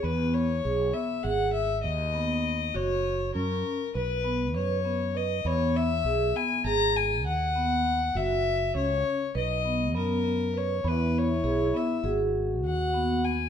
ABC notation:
X:1
M:9/8
L:1/8
Q:3/8=67
K:G#m
V:1 name="Violin"
B c2 e f e d3 | c2 A2 B2 c2 d | c e2 g a g f3 | e2 c2 d2 A2 c |
B c2 e z2 f2 g |]
V:2 name="French horn"
z8 z | z8 z | z8 z | z8 z |
E4 F4- F |]
V:3 name="Vibraphone"
B,2 G B, G2 z B,2 | F2 C2 B B, B B, B | B,2 G B, G2 z B,2 | F2 C2 B B, B, B, B |
B,2 G B, G2 z B,2 |]
V:4 name="Fretless electric bass" clef=bass
E,,2 B,,, z G,,,2 D,,3 | F,,,2 F,, z B,,,2 F,,3 | E,,2 B,,, z G,,,2 D,,3 | F,,,2 C,, z B,,,2 F,,3 |
E,,2 B,,, z G,,,2 D,,3 |]